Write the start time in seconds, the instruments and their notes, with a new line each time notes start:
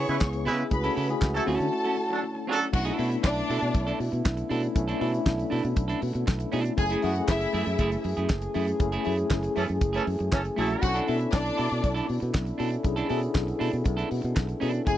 Already playing: french horn section C#3 B3 E4, tine electric piano B3 C#4 E4 G#4, string section C#5 C#6
0.08 fingered electric bass C#3, horn section G#3 E4 B4, muted clean electric guitar stroke, closed hi-hat
0.20 fingered electric bass C#2, muted clean electric guitar stroke, kick, snare, clap
0.33 muted clean electric guitar stroke, closed hi-hat
0.45 fingered electric bass C#3, horn section G#3 E4 B4, clean electric guitar B3 E4 G#4, open hi-hat
0.58 muted clean electric guitar stroke, closed hi-hat
0.71 fingered electric bass C#2, french horn section E3 A3 F#4, tine electric piano A3 C#4 E4 G#4, string section B4 B5, muted clean electric guitar stroke, kick, closed hi-hat
0.84 clean electric guitar C#4 E4 A4, closed hi-hat
0.96 fingered electric bass C#3, clean electric guitar C#4 E4 A4, open hi-hat
1.09 tine electric piano A3 C#4 E4 G#4, muted clean electric guitar stroke, closed hi-hat
1.21 fingered electric bass C#2, muted clean electric guitar stroke, kick, snare, clap
1.34 horn section F#3 E4 A4, muted clean electric guitar stroke, closed hi-hat
1.46 fingered electric bass D2, french horn section D3 C#4, tine electric piano A3 C#4 E4 F#4, clean electric guitar C#4 F#4 A4, string section A4 A5, open hi-hat
1.59 fingered electric bass D3, muted clean electric guitar stroke, closed hi-hat
1.72 muted clean electric guitar stroke
1.84 clean electric guitar C#4 F#4 A4
1.97 muted clean electric guitar stroke
2.10 horn section F#3 D4 A4, muted clean electric guitar stroke
2.23 muted clean electric guitar stroke
2.35 muted clean electric guitar stroke
2.47 horn section F#3 D4 A4, clean electric guitar C#4 F#4 A4
2.61 muted clean electric guitar stroke
2.73 fingered electric bass B1, french horn section D3 A3 B3 E4, tine electric piano A3 C#4 D4 E4, string section F#4 F#5, muted clean electric guitar stroke, kick, crash
2.85 clean electric guitar D4 E4 A4, closed hi-hat
2.97 fingered electric bass B2, tine electric piano A3 B3 D4 E4, clean electric guitar D4 E4 A4, string section E4 E5, open hi-hat
3.10 muted clean electric guitar stroke, closed hi-hat
3.23 fingered electric bass B1, string section D4 D5, muted clean electric guitar stroke, kick, snare, clap
3.36 muted clean electric guitar stroke, closed hi-hat
3.49 fingered electric bass B2, clean electric guitar D4 E4 A4, open hi-hat
3.62 fingered electric bass B2, muted clean electric guitar stroke, closed hi-hat
3.74 fingered electric bass B1, muted clean electric guitar stroke, kick, closed hi-hat
3.87 clean electric guitar D4 E4 A4, closed hi-hat
4.00 fingered electric bass B2, muted clean electric guitar stroke, open hi-hat
4.12 fingered electric bass B2, muted clean electric guitar stroke, closed hi-hat
4.25 fingered electric bass B1, muted clean electric guitar stroke, kick, snare, clap
4.37 muted clean electric guitar stroke, closed hi-hat
4.49 fingered electric bass B2, tine electric piano A3 C#4 D4 E4, clean electric guitar D4 E4 A4, open hi-hat
4.63 muted clean electric guitar stroke, closed hi-hat
4.75 fingered electric bass B1, tine electric piano A3 C#4 D4 E4, muted clean electric guitar stroke, kick, closed hi-hat
4.88 clean electric guitar D4 E4 A4, closed hi-hat
5.00 fingered electric bass B2, tine electric piano A3 C#4 D4 E4, clean electric guitar D4 E4 A4, open hi-hat
5.13 muted clean electric guitar stroke, closed hi-hat
5.26 fingered electric bass B1, muted clean electric guitar stroke, kick, snare, clap
5.38 muted clean electric guitar stroke, closed hi-hat
5.50 fingered electric bass B2, clean electric guitar D4 E4 A4, open hi-hat
5.64 fingered electric bass B2, muted clean electric guitar stroke, closed hi-hat
5.76 fingered electric bass B1, muted clean electric guitar stroke, kick, closed hi-hat
5.88 clean electric guitar D4 E4 A4, closed hi-hat
6.01 fingered electric bass B2, muted clean electric guitar stroke, open hi-hat
6.14 fingered electric bass B2, muted clean electric guitar stroke, closed hi-hat
6.26 fingered electric bass B1, muted clean electric guitar stroke, kick, snare, clap
6.39 muted clean electric guitar stroke, closed hi-hat
6.52 fingered electric bass B2, tine electric piano A3 C#4 D4 E4, clean electric guitar D4 E4 A4, open hi-hat
6.65 muted clean electric guitar stroke, closed hi-hat
6.77 fingered electric bass F#1, french horn section E3 A3 G#4, tine electric piano A3 C#4 E4 G#4, string section G#4 G#5, muted clean electric guitar stroke, kick, closed hi-hat
6.90 clean electric guitar A3 E4 G#4, closed hi-hat
7.02 fingered electric bass F#2, tine electric piano A3 C#4 E4 G#4, clean electric guitar A3 E4 G#4, string section F#4 F#5, open hi-hat
7.15 muted clean electric guitar stroke, closed hi-hat
7.28 fingered electric bass F#1, string section E4 E5, muted clean electric guitar stroke, kick, snare, clap
7.40 muted clean electric guitar stroke, closed hi-hat
7.53 fingered electric bass F#2, clean electric guitar A3 E4 G#4, open hi-hat
7.66 fingered electric bass F#2, muted clean electric guitar stroke, closed hi-hat
7.78 fingered electric bass F#1, clean electric guitar A3 E4 G#4, kick, closed hi-hat
7.91 muted clean electric guitar stroke, closed hi-hat
8.04 fingered electric bass F#2, muted clean electric guitar stroke, open hi-hat
8.17 fingered electric bass F#2, clean electric guitar A3 E4 G#4, closed hi-hat
8.29 fingered electric bass F#1, muted clean electric guitar stroke, kick, snare, clap
8.42 muted clean electric guitar stroke, closed hi-hat
8.54 fingered electric bass F#2, tine electric piano A3 C#4 E4 G#4, clean electric guitar A3 E4 G#4, open hi-hat
8.67 muted clean electric guitar stroke, closed hi-hat
8.80 fingered electric bass F#1, tine electric piano A3 C#4 E4 G#4, muted clean electric guitar stroke, kick, closed hi-hat
8.92 clean electric guitar A3 E4 G#4, closed hi-hat
9.05 fingered electric bass F#2, tine electric piano A3 C#4 E4 G#4, clean electric guitar A3 E4 G#4, open hi-hat
9.17 muted clean electric guitar stroke, closed hi-hat
9.30 fingered electric bass F#1, muted clean electric guitar stroke, kick, snare, clap
9.43 muted clean electric guitar stroke, closed hi-hat
9.56 fingered electric bass F#2, horn section E3 C#4 A4, clean electric guitar A3 E4 G#4, open hi-hat
9.68 fingered electric bass F#2, muted clean electric guitar stroke, closed hi-hat
9.81 fingered electric bass F#1, muted clean electric guitar stroke, kick, closed hi-hat
9.93 horn section E3 C#4 A4, clean electric guitar A3 E4 G#4, closed hi-hat
10.06 fingered electric bass F#2, muted clean electric guitar stroke, open hi-hat
10.19 fingered electric bass F#2, muted clean electric guitar stroke, closed hi-hat
10.32 fingered electric bass F#1, horn section E3 C#4 A4, muted clean electric guitar stroke, kick, snare, clap
10.44 muted clean electric guitar stroke, closed hi-hat
10.56 fingered electric bass A#1, horn section F#3 E4 A4, clean electric guitar A3 E4 G#4, tine electric piano A3 C#4 E4 F#4, open hi-hat
10.70 muted clean electric guitar stroke, closed hi-hat
10.82 fingered electric bass B1, french horn section D3 D4 E4, tine electric piano C#4 D4 E4 A4, string section F#4 F#5, muted clean electric guitar stroke, kick, closed hi-hat
10.94 clean electric guitar D4 E4 A4, closed hi-hat
11.06 fingered electric bass B2, tine electric piano B3 D4 E4 A4, clean electric guitar D4 E4 A4, string section E4 E5, open hi-hat
11.21 closed hi-hat
11.32 fingered electric bass B1, string section D4 D5, muted clean electric guitar stroke, kick, snare, clap
11.44 muted clean electric guitar stroke, closed hi-hat
11.56 fingered electric bass B2, clean electric guitar D4 E4 A4, open hi-hat
11.70 fingered electric bass B2, muted clean electric guitar stroke, closed hi-hat
11.82 fingered electric bass B1, muted clean electric guitar stroke, kick, closed hi-hat
11.95 clean electric guitar D4 E4 A4, closed hi-hat
12.08 fingered electric bass B2, muted clean electric guitar stroke, open hi-hat
12.20 fingered electric bass B2, muted clean electric guitar stroke, closed hi-hat
12.33 fingered electric bass B1, muted clean electric guitar stroke, kick, snare, clap
12.45 muted clean electric guitar stroke, closed hi-hat
12.58 fingered electric bass B2, tine electric piano C#4 D4 E4 A4, clean electric guitar D4 E4 A4, open hi-hat
12.70 muted clean electric guitar stroke, closed hi-hat
12.83 fingered electric bass B1, french horn section B3, tine electric piano C#4 D4 E4 G#4, muted clean electric guitar stroke, kick, closed hi-hat
12.96 clean electric guitar D4 E4 A4, closed hi-hat
13.09 fingered electric bass B2, tine electric piano C#4 D4 E4 G#4, clean electric guitar D4 E4 A4, open hi-hat
13.17 tine electric piano A4
13.22 muted clean electric guitar stroke, closed hi-hat
13.35 fingered electric bass B1, muted clean electric guitar stroke, kick, snare, clap
13.47 muted clean electric guitar stroke, closed hi-hat
13.59 fingered electric bass B2, clean electric guitar D4 E4 A4, open hi-hat
13.72 fingered electric bass B2, muted clean electric guitar stroke, closed hi-hat
13.85 fingered electric bass B1, muted clean electric guitar stroke, kick, closed hi-hat
13.97 clean electric guitar D4 E4 A4, closed hi-hat
14.10 fingered electric bass B2, muted clean electric guitar stroke, open hi-hat
14.22 fingered electric bass B2, muted clean electric guitar stroke, closed hi-hat
14.35 fingered electric bass B1, muted clean electric guitar stroke, kick, snare, clap
14.47 muted clean electric guitar stroke, closed hi-hat
14.60 fingered electric bass B2, tine electric piano C#4 D4 E4 A4, clean electric guitar D4 E4 A4, open hi-hat
14.72 muted clean electric guitar stroke, closed hi-hat
14.85 fingered electric bass F#1, french horn section E3 A3 G#4, tine electric piano A3 C#4 E4 G#4, string section G#4 G#5, muted clean electric guitar stroke, kick, closed hi-hat